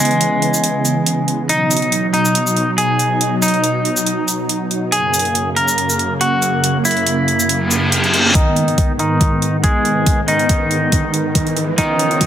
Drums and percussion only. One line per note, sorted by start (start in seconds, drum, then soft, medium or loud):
0.05 closed hi-hat medium
0.11 closed hi-hat soft
0.21 closed hi-hat medium
0.42 closed hi-hat soft
0.54 shaker medium
0.64 closed hi-hat medium
0.85 closed hi-hat soft
0.85 shaker medium
1.06 closed hi-hat medium
1.28 closed hi-hat soft
1.49 closed hi-hat medium
1.71 closed hi-hat soft
1.71 shaker medium
1.77 closed hi-hat medium
1.82 closed hi-hat soft
1.92 closed hi-hat medium
2.14 closed hi-hat soft
2.25 shaker medium
2.35 closed hi-hat medium
2.47 shaker medium
2.57 closed hi-hat soft
2.78 closed hi-hat medium
2.99 closed hi-hat soft
2.99 shaker soft
3.21 closed hi-hat medium
3.42 closed hi-hat soft
3.42 shaker medium
3.48 closed hi-hat medium
3.54 closed hi-hat soft
3.64 closed hi-hat medium
3.85 closed hi-hat soft
3.97 shaker medium
4.07 closed hi-hat medium
4.28 closed hi-hat soft
4.28 shaker medium
4.49 closed hi-hat medium
4.71 closed hi-hat soft
4.92 closed hi-hat medium
5.14 closed hi-hat soft
5.14 shaker medium
5.19 closed hi-hat medium
5.25 closed hi-hat soft
5.35 closed hi-hat medium
5.57 closed hi-hat medium
5.68 shaker medium
5.78 closed hi-hat medium
5.89 shaker medium
5.99 closed hi-hat soft
6.21 closed hi-hat medium
6.42 closed hi-hat soft
6.42 shaker medium
6.64 closed hi-hat medium
6.85 closed hi-hat soft
6.85 shaker medium
6.91 closed hi-hat medium
6.97 closed hi-hat soft
7.07 closed hi-hat medium
7.28 closed hi-hat medium
7.39 shaker medium
7.49 closed hi-hat medium
7.71 closed hi-hat medium
7.71 shaker medium
7.92 closed hi-hat medium
8.04 closed hi-hat soft
8.14 closed hi-hat medium
8.35 kick loud
8.35 closed hi-hat medium
8.56 closed hi-hat medium
8.68 closed hi-hat soft
8.78 kick medium
8.78 closed hi-hat medium
8.99 closed hi-hat medium
9.21 kick medium
9.21 closed hi-hat medium
9.42 closed hi-hat medium
9.64 kick loud
9.64 closed hi-hat medium
9.85 closed hi-hat medium
10.06 kick loud
10.06 closed hi-hat medium
10.28 closed hi-hat medium
10.39 closed hi-hat soft
10.49 kick loud
10.49 closed hi-hat medium
10.71 closed hi-hat medium
10.92 kick loud
10.92 closed hi-hat medium
11.14 closed hi-hat medium
11.35 kick loud
11.35 closed hi-hat medium
11.47 closed hi-hat soft
11.57 closed hi-hat medium
11.78 kick loud
11.78 closed hi-hat medium
11.99 closed hi-hat medium
12.11 closed hi-hat soft
12.21 kick loud
12.21 closed hi-hat medium